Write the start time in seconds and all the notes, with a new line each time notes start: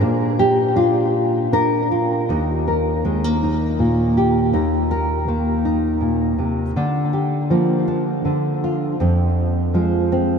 Already playing: G#4
0.01 A#2 D4
0.39 G4
0.75 D4 F4
1.52 D4 A#4
1.91 F4
2.29 D#2 D#4
2.68 A#4
3.05 D#3 G#3
3.24 A#3
3.43 D#4
3.79 A#2
4.17 G4
4.53 D#2 D#4
4.91 A#4
5.28 D#3 A#3
5.65 D#4
6.01 A#2
6.38 C3
6.76 D3 D4
7.13 G4
7.50 F3 A#3
7.88 D4
8.25 D3
8.64 F4
9.00 F2 C4
9.74 F3 G#3
10.12 C4